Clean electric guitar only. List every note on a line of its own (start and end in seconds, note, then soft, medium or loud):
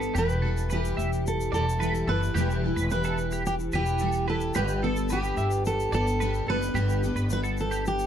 0.15 0.41 G4 loud
0.42 0.69 A4 medium
0.70 0.96 B4 medium
0.97 1.10 E5 medium
1.52 1.65 D5 medium
1.80 1.93 B4 medium
2.07 2.21 A4 medium
2.35 2.61 G4 loud
2.76 2.90 B4 medium
3.05 3.17 A4 medium
3.33 3.45 G4 medium
3.73 4.01 B4 medium
4.01 4.14 A4 medium
4.28 4.41 B4 medium
4.55 4.81 G4 loud
4.83 5.09 A4 medium
5.10 5.36 B4 medium
5.37 5.51 E5 medium
5.92 6.06 D5 medium
6.20 6.33 B4 medium
6.48 6.61 A4 medium
6.75 7.01 G4 loud
7.16 7.29 B4 medium
7.44 7.57 A4 medium
7.71 7.84 G4 medium